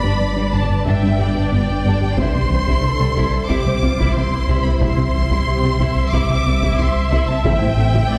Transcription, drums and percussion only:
2.18 taiko
2.67 taiko
3.17 taiko
3.50 taiko
4.00 taiko
4.82 taiko
5.31 taiko
5.80 taiko
6.13 taiko
6.62 taiko
7.45 taiko
7.94 taiko

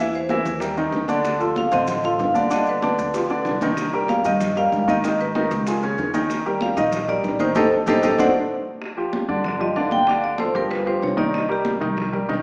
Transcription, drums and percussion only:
0.14 high conga, maracas
0.29 high bongo, high conga, maracas
0.44 high bongo, high conga, maracas
0.60 high bongo, high conga, maracas
0.76 high bongo, high conga, maracas
0.92 high bongo, low bongo, high conga, maracas
1.08 high bongo, high conga, maracas
1.24 high bongo, high conga, maracas
1.40 high conga, maracas
1.56 high bongo, high conga, maracas
1.72 high bongo, high conga, maracas
1.87 high bongo, high conga, low conga, maracas
2.03 high bongo, high conga, maracas
2.19 high bongo, low bongo, high conga, maracas
2.35 high bongo, high conga, maracas
2.50 high bongo, high conga, maracas
2.67 high conga, maracas
2.82 high bongo, high conga, maracas
2.98 high bongo, high conga, maracas
3.14 high bongo, high conga, maracas
3.29 high bongo, high conga, maracas
3.45 low bongo, high conga, maracas
3.61 low bongo, high conga, maracas
3.77 high bongo, high conga, maracas
3.93 high conga, maracas
4.08 high bongo, high conga, maracas
4.24 high bongo, high conga, maracas
4.41 high bongo, high conga, low conga, maracas
4.56 high bongo, high conga, maracas
4.72 high bongo, low bongo, high conga, maracas
4.88 high bongo, high conga, maracas
5.04 high bongo, high conga, maracas
5.20 high conga, maracas
5.35 high bongo, high conga, maracas
5.51 high bongo, high conga, maracas
5.67 high bongo, high conga, maracas
5.82 high bongo, high conga, maracas
5.98 high bongo, low bongo, high conga, maracas
6.14 high bongo, high conga, maracas
6.29 high bongo, high conga, maracas
6.45 high conga, maracas
6.61 high bongo, high conga, maracas
6.76 high bongo, high conga, maracas
6.92 high bongo, high conga, low conga, maracas
7.08 high bongo, high conga, low conga, maracas
7.23 high bongo, low bongo, high conga, maracas
7.39 high bongo, high conga, maracas
7.55 low bongo, high conga, maracas
7.87 low bongo, high conga, maracas
8.02 low bongo, high conga, maracas
8.19 low bongo, high conga, maracas
8.82 high bongo, high conga
8.98 high conga
9.13 high bongo, high conga
9.29 high bongo, high conga
9.44 high bongo, high conga, low conga
9.60 high bongo, high conga, low conga
9.76 high bongo, low bongo, high conga
9.91 high bongo, high conga
10.07 high bongo, high conga
10.23 high conga
10.38 high bongo, high conga
10.54 high bongo, high conga
10.70 high bongo, high conga
10.86 high bongo, high conga
11.02 high bongo, low bongo, high conga
11.18 high bongo, high conga
11.33 high bongo, high conga
11.50 high conga
11.65 high bongo, high conga
11.81 high bongo, high conga
11.97 high bongo, high conga, low conga
12.13 high bongo, high conga, low conga
12.29 high bongo, low bongo, high conga

